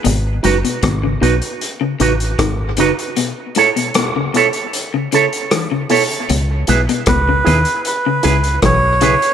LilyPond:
<<
  \new Staff \with { instrumentName = "Melodica" } { \time 4/4 \key cis \minor \tempo 4 = 77 r1 | r1 | r4 b'4 b'4 cis''4 | }
  \new Staff \with { instrumentName = "Clean electric guitar" } { \time 4/4 \key cis \minor r8 <dis' fis' b'>8 r8 <dis' fis' b'>8 r8 <dis' fis' b'>8 r8 <dis' fis' b'>8 | r8 <e' a' cis''>8 r8 <e' a' cis''>8 r8 <e' a' cis''>8 r8 <e' a' cis''>8 | r8 <e' gis' b'>8 r8 <e' gis' b'>8 r8 <e' gis' b'>8 r8 <e' gis' b'>8 | }
  \new Staff \with { instrumentName = "Clean electric guitar" } { \clef bass \time 4/4 \key cis \minor b,16 r16 gis,16 b,16 b,16 cis16 b,16 r8 cis16 cis16 r16 dis16 r16 cis16 r16 | b,16 r16 a,16 b,16 b,16 cis16 b,16 r8 cis16 cis16 r16 e16 cis16 b,16 r16 | b,16 r16 gis,16 b,16 b,16 cis16 b,16 r8 cis16 cis16 r16 e16 r16 cis16 r16 | }
  \new Staff \with { instrumentName = "Fingered electric bass" } { \clef bass \time 4/4 \key cis \minor gis,,8 fis,,16 r16 gis,,8 b,,16 r8. a,,8 gis,,8. r16 | r1 | cis,8 b,,16 r16 cis,8 dis,16 r8. cis,8 b,,8. r16 | }
  \new DrumStaff \with { instrumentName = "Drums" } \drummode { \time 4/4 hh8 hh16 hh16 <hh bd ss>8 hh16 hh16 hh8 hh16 hh16 <hh bd ss>8 hh16 hh16 | hh8 hh16 hh16 <hh ss>8 hh16 hh16 hh8 hh16 hh16 <hh ss>8 hho16 hh16 | hh8 hh16 hh16 <hh bd ss>8 hh16 hh16 hh8 hh16 hh16 <hh bd ss>8 hh16 hh16 | }
>>